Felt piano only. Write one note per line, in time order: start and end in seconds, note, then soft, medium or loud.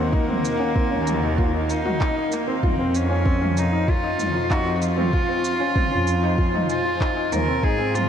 0.12 0.23 D#4 medium
0.28 0.50 C4 medium
0.60 0.70 C#4 medium
0.75 0.86 C4 medium
0.91 1.12 C#4 medium
1.23 1.33 D#4 medium
1.38 1.49 F4 medium
1.54 1.75 D#4 medium
1.85 1.96 F#4 medium
2.00 2.11 D#4 medium
2.16 2.37 D#4 medium
2.48 2.58 C4 medium
2.63 2.74 F4 loud
2.79 3.00 C4 medium
3.10 3.21 C#4 medium
3.25 3.36 C4 medium
3.41 3.62 C#4 medium
3.73 3.83 D#4 medium
3.88 3.98 F4 medium
4.03 4.25 D#4 medium
4.35 4.45 F4 medium
4.51 4.61 D#4 medium
4.66 4.87 D#4 medium
4.97 5.08 C4 medium
5.13 5.24 F4 loud
5.28 5.50 C4 medium
5.60 5.71 C#4 medium
5.75 5.86 C4 medium
5.91 6.12 C#4 medium
6.23 6.33 D#4 medium
6.38 6.48 F4 medium
6.54 6.75 D#4 medium
6.85 6.96 F4 medium
7.00 7.11 D#4 medium
7.16 7.38 D#4 medium
7.48 7.58 C4 medium
7.64 7.74 D#4 medium
7.79 8.00 C4 medium